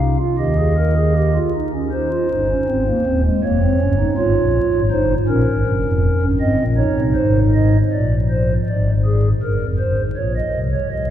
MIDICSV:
0, 0, Header, 1, 2, 480
1, 0, Start_track
1, 0, Key_signature, -4, "major"
1, 0, Tempo, 764331
1, 1208, Time_signature, 4, 2, 24, 8
1, 1681, Tempo, 749064
1, 7081, End_track
2, 0, Start_track
2, 0, Title_t, "Pipe organ"
2, 0, Program_c, 0, 19
2, 0, Note_on_c, 0, 36, 62
2, 0, Note_on_c, 0, 48, 64
2, 0, Note_on_c, 0, 77, 61
2, 1, Note_on_c, 0, 63, 61
2, 105, Note_off_c, 0, 63, 0
2, 107, Note_off_c, 0, 36, 0
2, 107, Note_off_c, 0, 48, 0
2, 107, Note_off_c, 0, 77, 0
2, 120, Note_on_c, 0, 65, 63
2, 226, Note_off_c, 0, 65, 0
2, 237, Note_on_c, 0, 75, 64
2, 238, Note_on_c, 0, 39, 66
2, 238, Note_on_c, 0, 67, 63
2, 239, Note_on_c, 0, 51, 64
2, 345, Note_off_c, 0, 67, 0
2, 364, Note_on_c, 0, 68, 58
2, 468, Note_off_c, 0, 68, 0
2, 483, Note_on_c, 0, 70, 65
2, 588, Note_off_c, 0, 70, 0
2, 606, Note_on_c, 0, 68, 62
2, 710, Note_off_c, 0, 68, 0
2, 727, Note_on_c, 0, 67, 65
2, 831, Note_off_c, 0, 67, 0
2, 846, Note_on_c, 0, 65, 64
2, 864, Note_off_c, 0, 75, 0
2, 865, Note_off_c, 0, 39, 0
2, 865, Note_off_c, 0, 51, 0
2, 951, Note_off_c, 0, 65, 0
2, 970, Note_on_c, 0, 63, 60
2, 1073, Note_off_c, 0, 63, 0
2, 1091, Note_on_c, 0, 61, 52
2, 1193, Note_off_c, 0, 61, 0
2, 1207, Note_on_c, 0, 63, 68
2, 1207, Note_on_c, 0, 72, 66
2, 1309, Note_off_c, 0, 63, 0
2, 1326, Note_on_c, 0, 65, 62
2, 1428, Note_off_c, 0, 65, 0
2, 1445, Note_on_c, 0, 43, 71
2, 1446, Note_on_c, 0, 31, 77
2, 1446, Note_on_c, 0, 63, 61
2, 1547, Note_off_c, 0, 63, 0
2, 1567, Note_on_c, 0, 61, 63
2, 1592, Note_off_c, 0, 31, 0
2, 1592, Note_off_c, 0, 43, 0
2, 1667, Note_off_c, 0, 61, 0
2, 1679, Note_on_c, 0, 60, 68
2, 1681, Note_on_c, 0, 32, 78
2, 1681, Note_on_c, 0, 44, 78
2, 1784, Note_off_c, 0, 60, 0
2, 1803, Note_on_c, 0, 58, 60
2, 1831, Note_off_c, 0, 32, 0
2, 1831, Note_off_c, 0, 44, 0
2, 1906, Note_off_c, 0, 58, 0
2, 1921, Note_on_c, 0, 27, 78
2, 1921, Note_on_c, 0, 60, 64
2, 1922, Note_on_c, 0, 39, 74
2, 2025, Note_off_c, 0, 60, 0
2, 2027, Note_off_c, 0, 72, 0
2, 2045, Note_on_c, 0, 56, 68
2, 2071, Note_off_c, 0, 27, 0
2, 2072, Note_off_c, 0, 39, 0
2, 2148, Note_off_c, 0, 56, 0
2, 2166, Note_on_c, 0, 58, 71
2, 2167, Note_on_c, 0, 29, 83
2, 2168, Note_on_c, 0, 41, 86
2, 2168, Note_on_c, 0, 73, 71
2, 2268, Note_off_c, 0, 58, 0
2, 2287, Note_on_c, 0, 60, 69
2, 2314, Note_off_c, 0, 29, 0
2, 2315, Note_off_c, 0, 41, 0
2, 2388, Note_off_c, 0, 60, 0
2, 2404, Note_on_c, 0, 31, 85
2, 2404, Note_on_c, 0, 61, 76
2, 2405, Note_on_c, 0, 43, 87
2, 2506, Note_off_c, 0, 61, 0
2, 2519, Note_on_c, 0, 63, 77
2, 2551, Note_off_c, 0, 31, 0
2, 2552, Note_off_c, 0, 43, 0
2, 2577, Note_off_c, 0, 73, 0
2, 2622, Note_off_c, 0, 63, 0
2, 2640, Note_on_c, 0, 73, 77
2, 2641, Note_on_c, 0, 44, 93
2, 2642, Note_on_c, 0, 32, 92
2, 2642, Note_on_c, 0, 65, 77
2, 2743, Note_off_c, 0, 32, 0
2, 2743, Note_off_c, 0, 44, 0
2, 2759, Note_on_c, 0, 46, 86
2, 2760, Note_on_c, 0, 34, 84
2, 2906, Note_off_c, 0, 34, 0
2, 2906, Note_off_c, 0, 46, 0
2, 2996, Note_on_c, 0, 44, 85
2, 2997, Note_on_c, 0, 32, 84
2, 3048, Note_off_c, 0, 65, 0
2, 3048, Note_off_c, 0, 73, 0
2, 3098, Note_off_c, 0, 32, 0
2, 3098, Note_off_c, 0, 44, 0
2, 3114, Note_on_c, 0, 31, 90
2, 3114, Note_on_c, 0, 43, 97
2, 3114, Note_on_c, 0, 63, 84
2, 3114, Note_on_c, 0, 72, 79
2, 3260, Note_off_c, 0, 31, 0
2, 3260, Note_off_c, 0, 43, 0
2, 3260, Note_off_c, 0, 63, 0
2, 3261, Note_off_c, 0, 72, 0
2, 3349, Note_on_c, 0, 34, 96
2, 3350, Note_on_c, 0, 46, 89
2, 3350, Note_on_c, 0, 61, 81
2, 3352, Note_on_c, 0, 70, 76
2, 3451, Note_off_c, 0, 34, 0
2, 3452, Note_off_c, 0, 46, 0
2, 3469, Note_on_c, 0, 32, 90
2, 3471, Note_on_c, 0, 44, 92
2, 3572, Note_off_c, 0, 32, 0
2, 3573, Note_off_c, 0, 44, 0
2, 3587, Note_on_c, 0, 31, 97
2, 3588, Note_on_c, 0, 43, 92
2, 3691, Note_off_c, 0, 31, 0
2, 3691, Note_off_c, 0, 43, 0
2, 3707, Note_on_c, 0, 29, 87
2, 3708, Note_on_c, 0, 41, 87
2, 3856, Note_off_c, 0, 29, 0
2, 3857, Note_off_c, 0, 41, 0
2, 3947, Note_on_c, 0, 31, 89
2, 3947, Note_on_c, 0, 43, 92
2, 3967, Note_off_c, 0, 61, 0
2, 3968, Note_off_c, 0, 70, 0
2, 4051, Note_off_c, 0, 31, 0
2, 4051, Note_off_c, 0, 43, 0
2, 4065, Note_on_c, 0, 32, 99
2, 4067, Note_on_c, 0, 44, 99
2, 4067, Note_on_c, 0, 75, 81
2, 4068, Note_on_c, 0, 60, 78
2, 4169, Note_off_c, 0, 32, 0
2, 4170, Note_off_c, 0, 44, 0
2, 4187, Note_on_c, 0, 46, 81
2, 4189, Note_on_c, 0, 34, 87
2, 4217, Note_off_c, 0, 60, 0
2, 4217, Note_off_c, 0, 75, 0
2, 4306, Note_on_c, 0, 63, 78
2, 4306, Note_on_c, 0, 73, 75
2, 4337, Note_off_c, 0, 46, 0
2, 4338, Note_off_c, 0, 34, 0
2, 4427, Note_on_c, 0, 48, 85
2, 4428, Note_on_c, 0, 36, 91
2, 4457, Note_off_c, 0, 73, 0
2, 4533, Note_off_c, 0, 36, 0
2, 4533, Note_off_c, 0, 48, 0
2, 4547, Note_on_c, 0, 72, 76
2, 4550, Note_on_c, 0, 32, 84
2, 4550, Note_on_c, 0, 44, 80
2, 4700, Note_off_c, 0, 72, 0
2, 4795, Note_on_c, 0, 75, 72
2, 4935, Note_off_c, 0, 63, 0
2, 4946, Note_off_c, 0, 75, 0
2, 4969, Note_off_c, 0, 44, 0
2, 4970, Note_off_c, 0, 32, 0
2, 5042, Note_on_c, 0, 46, 61
2, 5042, Note_on_c, 0, 74, 69
2, 5043, Note_on_c, 0, 34, 62
2, 5191, Note_off_c, 0, 74, 0
2, 5287, Note_on_c, 0, 72, 66
2, 5434, Note_off_c, 0, 72, 0
2, 5456, Note_off_c, 0, 46, 0
2, 5457, Note_off_c, 0, 34, 0
2, 5526, Note_on_c, 0, 32, 56
2, 5526, Note_on_c, 0, 44, 57
2, 5526, Note_on_c, 0, 74, 68
2, 5674, Note_off_c, 0, 74, 0
2, 5765, Note_on_c, 0, 68, 66
2, 5912, Note_off_c, 0, 68, 0
2, 5936, Note_off_c, 0, 32, 0
2, 5937, Note_off_c, 0, 44, 0
2, 6005, Note_on_c, 0, 70, 72
2, 6006, Note_on_c, 0, 43, 62
2, 6007, Note_on_c, 0, 31, 64
2, 6107, Note_off_c, 0, 31, 0
2, 6107, Note_off_c, 0, 43, 0
2, 6121, Note_on_c, 0, 41, 57
2, 6123, Note_on_c, 0, 29, 59
2, 6152, Note_off_c, 0, 70, 0
2, 6224, Note_off_c, 0, 41, 0
2, 6225, Note_off_c, 0, 29, 0
2, 6239, Note_on_c, 0, 72, 76
2, 6240, Note_on_c, 0, 43, 62
2, 6241, Note_on_c, 0, 31, 63
2, 6343, Note_off_c, 0, 43, 0
2, 6344, Note_off_c, 0, 31, 0
2, 6361, Note_on_c, 0, 32, 64
2, 6362, Note_on_c, 0, 44, 64
2, 6389, Note_off_c, 0, 72, 0
2, 6464, Note_off_c, 0, 32, 0
2, 6464, Note_off_c, 0, 44, 0
2, 6478, Note_on_c, 0, 73, 72
2, 6480, Note_on_c, 0, 34, 62
2, 6481, Note_on_c, 0, 46, 64
2, 6583, Note_off_c, 0, 73, 0
2, 6603, Note_on_c, 0, 75, 73
2, 6629, Note_off_c, 0, 34, 0
2, 6630, Note_off_c, 0, 46, 0
2, 6718, Note_on_c, 0, 36, 64
2, 6718, Note_on_c, 0, 48, 63
2, 6751, Note_off_c, 0, 75, 0
2, 6838, Note_on_c, 0, 73, 63
2, 6866, Note_off_c, 0, 36, 0
2, 6867, Note_off_c, 0, 48, 0
2, 6941, Note_off_c, 0, 73, 0
2, 6957, Note_on_c, 0, 48, 75
2, 6957, Note_on_c, 0, 75, 67
2, 6958, Note_on_c, 0, 36, 74
2, 7060, Note_off_c, 0, 75, 0
2, 7081, Note_off_c, 0, 36, 0
2, 7081, Note_off_c, 0, 48, 0
2, 7081, End_track
0, 0, End_of_file